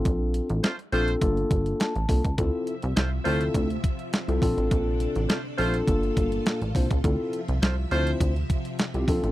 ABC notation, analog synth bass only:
X:1
M:4/4
L:1/16
Q:1/4=103
K:Dm
V:1 name="Analog synth bass" clef=bass
B,,,3 A,,, z2 B,,,2 G,,,2 G,,,2 z A,,, C,, ^C,, | D,, z2 C,, C,,2 D,,2 D,,2 z3 C,, B,,, A,,, | B,,,3 A,,, z2 B,,,2 G,,,2 G,,,2 z A,,, C,, ^C,, | D,, z2 C,, C,,2 D,,2 D,,2 z3 C,, B,,, A,,, |]